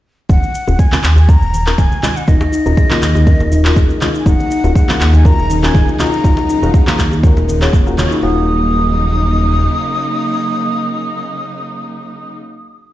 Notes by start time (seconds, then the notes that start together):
0.29 D#1 C#4 D#4 F#4 A#4 F#5, kick, djembe tone, high conga, shaker
0.43 muted conga, shaker
0.55 shaker
0.68 D#1 C#4 F4 F#4 A#4, djembe tone, shaker
0.79 G#5, kick, muted conga, shaker
0.92 C#4 F4 F#4 A#4, clap, high conga, low conga, shaker
1.04 D#2, clap, shaker
1.16 G#5, muted conga, djembe tone, shaker
1.29 C#4 F4 F#4 A#4 A#5, kick, low conga, shaker
1.42 D#1, shaker
1.54 muted conga, high conga, shaker
1.67 C#4 F4 F#4 A#4, clap, shaker
1.78 D#1 G#5, kick, high conga, shaker
1.92 muted conga, low conga, shaker
2.03 C#4 F4 F#4 D#5, clap, high conga, low conga, shaker
2.16 F#5, shaker
2.28 D#1 C#4 D#4 F4 F#4 A#4 D#5, kick, high conga, shaker
2.41 djembe slap, muted conga, shaker
2.52 D#4, shaker
2.66 D#1 C#4 F4 F#4 A#4, djembe tone, shaker
2.77 G#4, kick, muted conga, shaker
2.90 A#3 C#4 F4 F#4 A#4, clap, high conga, low conga, shaker
3.02 D#2, clap, shaker
3.15 D#4, muted conga, djembe tone, shaker
3.27 C#4 F4 F#4 A#4, kick, shaker
3.40 D#1, djembe slap, shaker
3.52 D#4, muted conga, high conga, shaker
3.65 C#4 F4 F#4 A#4, clap, shaker
3.76 D#1 G#4, kick, shaker
3.89 C#4, muted conga, shaker
4.01 C#4 F4 F#4 D#5, clap, high conga, low conga, shaker
4.14 D#4, shaker
4.19 G#5
4.26 D#1 C#3 F#3 A#3 C#4 D#4 F#4 A#4 F#5, kick, high conga, djembe tone, shaker
4.40 muted conga, shaker
4.50 D#4, shaker
4.64 D#1 C#4 F4 F#4 A#4, djembe tone, shaker
4.75 G#4 F#5, kick, muted conga, shaker
4.88 A#3 C#4 F4 F#4 A#4, clap, high conga, low conga, shaker
5.01 D#2, clap, shaker
5.13 D#4 G#5, muted conga, djembe tone, shaker
5.25 C#4 F4 F#4 A#4 A#5, kick, low conga, shaker
5.39 D#1, shaker
5.50 D#4, muted conga, high conga, shaker
5.63 C#4 F4 F#4 A#4 G#5, clap, shaker
5.74 D#1 G#4, kick, high conga, shaker
5.88 C#4, muted conga, low conga, shaker
5.99 C#4 F4 F#4 D#5 A#5, clap, high conga, low conga, shaker
6.12 D#4, shaker
6.24 D#1 G#3 C#4 D#4 F4 F#4 A#4, kick, high conga, shaker
6.37 djembe slap, muted conga, shaker
6.49 D#4, shaker
6.62 D#1 C#4 F4 F#4 A#4, djembe tone, shaker
6.74 G#4, kick, muted conga, shaker
6.87 A#3 C#4 F4 F#4 A#4, clap, high conga, low conga, shaker
6.99 D#2, kick, clap, shaker
7.11 D#4, muted conga, djembe tone, shaker
7.23 C#4 F4 F#4 A#4, kick, shaker
7.37 D#1, djembe slap, shaker
7.48 A#4, muted conga, high conga, shaker
7.61 C#4 F4 F#4 G#4 C#5, clap, shaker
7.73 D#1 A#3, kick, shaker
7.86 C#4 F4 F#4 A#4, muted conga, shaker
7.98 C#4 F4 F#4 C#5, clap, high conga, low conga, shaker
8.11 D#4, shaker
8.23 D#1 C#3 F#3 A#3 C#4 D#4 F4 F#4 A#4 D#6